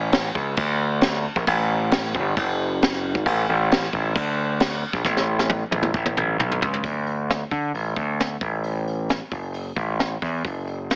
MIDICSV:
0, 0, Header, 1, 3, 480
1, 0, Start_track
1, 0, Key_signature, 3, "major"
1, 0, Tempo, 448766
1, 1573, Time_signature, 4, 2, 24, 8
1, 11721, End_track
2, 0, Start_track
2, 0, Title_t, "Picked electric bass"
2, 0, Program_c, 0, 34
2, 0, Note_on_c, 0, 33, 91
2, 313, Note_off_c, 0, 33, 0
2, 374, Note_on_c, 0, 37, 80
2, 581, Note_off_c, 0, 37, 0
2, 614, Note_on_c, 0, 38, 89
2, 1334, Note_off_c, 0, 38, 0
2, 1460, Note_on_c, 0, 34, 86
2, 1560, Note_off_c, 0, 34, 0
2, 1578, Note_on_c, 0, 33, 115
2, 2300, Note_on_c, 0, 31, 89
2, 2316, Note_off_c, 0, 33, 0
2, 2501, Note_off_c, 0, 31, 0
2, 2534, Note_on_c, 0, 30, 94
2, 3368, Note_off_c, 0, 30, 0
2, 3368, Note_on_c, 0, 32, 85
2, 3470, Note_off_c, 0, 32, 0
2, 3487, Note_on_c, 0, 33, 108
2, 3692, Note_off_c, 0, 33, 0
2, 3735, Note_on_c, 0, 33, 93
2, 4142, Note_off_c, 0, 33, 0
2, 4210, Note_on_c, 0, 33, 96
2, 4413, Note_off_c, 0, 33, 0
2, 4448, Note_on_c, 0, 38, 98
2, 5166, Note_off_c, 0, 38, 0
2, 5280, Note_on_c, 0, 34, 81
2, 5383, Note_off_c, 0, 34, 0
2, 5402, Note_on_c, 0, 33, 108
2, 6019, Note_off_c, 0, 33, 0
2, 6111, Note_on_c, 0, 33, 78
2, 6321, Note_off_c, 0, 33, 0
2, 6353, Note_on_c, 0, 33, 88
2, 6597, Note_off_c, 0, 33, 0
2, 6602, Note_on_c, 0, 33, 98
2, 6817, Note_off_c, 0, 33, 0
2, 6839, Note_on_c, 0, 35, 86
2, 7056, Note_off_c, 0, 35, 0
2, 7083, Note_on_c, 0, 37, 80
2, 7298, Note_off_c, 0, 37, 0
2, 7315, Note_on_c, 0, 38, 89
2, 7937, Note_off_c, 0, 38, 0
2, 8039, Note_on_c, 0, 50, 77
2, 8247, Note_off_c, 0, 50, 0
2, 8282, Note_on_c, 0, 33, 71
2, 8489, Note_off_c, 0, 33, 0
2, 8518, Note_on_c, 0, 38, 75
2, 8935, Note_off_c, 0, 38, 0
2, 9000, Note_on_c, 0, 33, 80
2, 9831, Note_off_c, 0, 33, 0
2, 9966, Note_on_c, 0, 30, 69
2, 10383, Note_off_c, 0, 30, 0
2, 10443, Note_on_c, 0, 33, 87
2, 10862, Note_off_c, 0, 33, 0
2, 10936, Note_on_c, 0, 40, 79
2, 11143, Note_off_c, 0, 40, 0
2, 11172, Note_on_c, 0, 30, 87
2, 11721, Note_off_c, 0, 30, 0
2, 11721, End_track
3, 0, Start_track
3, 0, Title_t, "Drums"
3, 131, Note_on_c, 9, 49, 61
3, 141, Note_on_c, 9, 38, 119
3, 238, Note_off_c, 9, 49, 0
3, 248, Note_off_c, 9, 38, 0
3, 377, Note_on_c, 9, 36, 83
3, 484, Note_off_c, 9, 36, 0
3, 606, Note_on_c, 9, 49, 66
3, 615, Note_on_c, 9, 36, 119
3, 713, Note_off_c, 9, 49, 0
3, 722, Note_off_c, 9, 36, 0
3, 1082, Note_on_c, 9, 49, 66
3, 1092, Note_on_c, 9, 38, 110
3, 1189, Note_off_c, 9, 49, 0
3, 1199, Note_off_c, 9, 38, 0
3, 1455, Note_on_c, 9, 36, 92
3, 1562, Note_off_c, 9, 36, 0
3, 1570, Note_on_c, 9, 49, 68
3, 1576, Note_on_c, 9, 36, 95
3, 1677, Note_off_c, 9, 49, 0
3, 1683, Note_off_c, 9, 36, 0
3, 2047, Note_on_c, 9, 49, 70
3, 2057, Note_on_c, 9, 38, 120
3, 2154, Note_off_c, 9, 49, 0
3, 2164, Note_off_c, 9, 38, 0
3, 2295, Note_on_c, 9, 36, 84
3, 2402, Note_off_c, 9, 36, 0
3, 2534, Note_on_c, 9, 36, 121
3, 2536, Note_on_c, 9, 49, 66
3, 2641, Note_off_c, 9, 36, 0
3, 2643, Note_off_c, 9, 49, 0
3, 3017, Note_on_c, 9, 49, 63
3, 3027, Note_on_c, 9, 38, 113
3, 3124, Note_off_c, 9, 49, 0
3, 3134, Note_off_c, 9, 38, 0
3, 3369, Note_on_c, 9, 36, 93
3, 3476, Note_off_c, 9, 36, 0
3, 3487, Note_on_c, 9, 36, 100
3, 3498, Note_on_c, 9, 49, 61
3, 3594, Note_off_c, 9, 36, 0
3, 3605, Note_off_c, 9, 49, 0
3, 3974, Note_on_c, 9, 49, 62
3, 3984, Note_on_c, 9, 38, 122
3, 4081, Note_off_c, 9, 49, 0
3, 4090, Note_off_c, 9, 38, 0
3, 4206, Note_on_c, 9, 36, 79
3, 4313, Note_off_c, 9, 36, 0
3, 4445, Note_on_c, 9, 36, 114
3, 4453, Note_on_c, 9, 49, 64
3, 4552, Note_off_c, 9, 36, 0
3, 4560, Note_off_c, 9, 49, 0
3, 4920, Note_on_c, 9, 49, 64
3, 4929, Note_on_c, 9, 38, 108
3, 5027, Note_off_c, 9, 49, 0
3, 5036, Note_off_c, 9, 38, 0
3, 5277, Note_on_c, 9, 36, 94
3, 5384, Note_off_c, 9, 36, 0
3, 5398, Note_on_c, 9, 36, 101
3, 5408, Note_on_c, 9, 38, 70
3, 5505, Note_off_c, 9, 36, 0
3, 5515, Note_off_c, 9, 38, 0
3, 5529, Note_on_c, 9, 38, 64
3, 5636, Note_off_c, 9, 38, 0
3, 5767, Note_on_c, 9, 38, 68
3, 5874, Note_off_c, 9, 38, 0
3, 5878, Note_on_c, 9, 48, 82
3, 5985, Note_off_c, 9, 48, 0
3, 6118, Note_on_c, 9, 48, 88
3, 6225, Note_off_c, 9, 48, 0
3, 6231, Note_on_c, 9, 47, 86
3, 6338, Note_off_c, 9, 47, 0
3, 6355, Note_on_c, 9, 36, 117
3, 6462, Note_off_c, 9, 36, 0
3, 6477, Note_on_c, 9, 47, 76
3, 6584, Note_off_c, 9, 47, 0
3, 6599, Note_on_c, 9, 45, 99
3, 6706, Note_off_c, 9, 45, 0
3, 6842, Note_on_c, 9, 45, 98
3, 6949, Note_off_c, 9, 45, 0
3, 6968, Note_on_c, 9, 43, 96
3, 7075, Note_off_c, 9, 43, 0
3, 7082, Note_on_c, 9, 43, 120
3, 7189, Note_off_c, 9, 43, 0
3, 7204, Note_on_c, 9, 43, 102
3, 7311, Note_off_c, 9, 43, 0
3, 7312, Note_on_c, 9, 46, 57
3, 7314, Note_on_c, 9, 36, 98
3, 7419, Note_off_c, 9, 46, 0
3, 7421, Note_off_c, 9, 36, 0
3, 7556, Note_on_c, 9, 46, 42
3, 7663, Note_off_c, 9, 46, 0
3, 7803, Note_on_c, 9, 46, 57
3, 7813, Note_on_c, 9, 38, 97
3, 7910, Note_off_c, 9, 46, 0
3, 7920, Note_off_c, 9, 38, 0
3, 8037, Note_on_c, 9, 36, 74
3, 8041, Note_on_c, 9, 46, 44
3, 8144, Note_off_c, 9, 36, 0
3, 8148, Note_off_c, 9, 46, 0
3, 8286, Note_on_c, 9, 46, 58
3, 8393, Note_off_c, 9, 46, 0
3, 8519, Note_on_c, 9, 36, 79
3, 8525, Note_on_c, 9, 46, 45
3, 8626, Note_off_c, 9, 36, 0
3, 8632, Note_off_c, 9, 46, 0
3, 8766, Note_on_c, 9, 46, 57
3, 8775, Note_on_c, 9, 38, 90
3, 8873, Note_off_c, 9, 46, 0
3, 8882, Note_off_c, 9, 38, 0
3, 8997, Note_on_c, 9, 36, 101
3, 8999, Note_on_c, 9, 46, 47
3, 9104, Note_off_c, 9, 36, 0
3, 9106, Note_off_c, 9, 46, 0
3, 9237, Note_on_c, 9, 46, 59
3, 9344, Note_off_c, 9, 46, 0
3, 9491, Note_on_c, 9, 46, 43
3, 9598, Note_off_c, 9, 46, 0
3, 9725, Note_on_c, 9, 46, 65
3, 9735, Note_on_c, 9, 38, 98
3, 9832, Note_off_c, 9, 46, 0
3, 9842, Note_off_c, 9, 38, 0
3, 9965, Note_on_c, 9, 36, 73
3, 9969, Note_on_c, 9, 46, 50
3, 10072, Note_off_c, 9, 36, 0
3, 10076, Note_off_c, 9, 46, 0
3, 10204, Note_on_c, 9, 46, 63
3, 10311, Note_off_c, 9, 46, 0
3, 10443, Note_on_c, 9, 46, 45
3, 10445, Note_on_c, 9, 36, 77
3, 10550, Note_off_c, 9, 46, 0
3, 10552, Note_off_c, 9, 36, 0
3, 10697, Note_on_c, 9, 38, 94
3, 10803, Note_off_c, 9, 38, 0
3, 10933, Note_on_c, 9, 36, 78
3, 10938, Note_on_c, 9, 46, 47
3, 11040, Note_off_c, 9, 36, 0
3, 11045, Note_off_c, 9, 46, 0
3, 11170, Note_on_c, 9, 46, 56
3, 11173, Note_on_c, 9, 36, 94
3, 11277, Note_off_c, 9, 46, 0
3, 11280, Note_off_c, 9, 36, 0
3, 11416, Note_on_c, 9, 46, 42
3, 11523, Note_off_c, 9, 46, 0
3, 11659, Note_on_c, 9, 46, 58
3, 11668, Note_on_c, 9, 38, 98
3, 11721, Note_off_c, 9, 38, 0
3, 11721, Note_off_c, 9, 46, 0
3, 11721, End_track
0, 0, End_of_file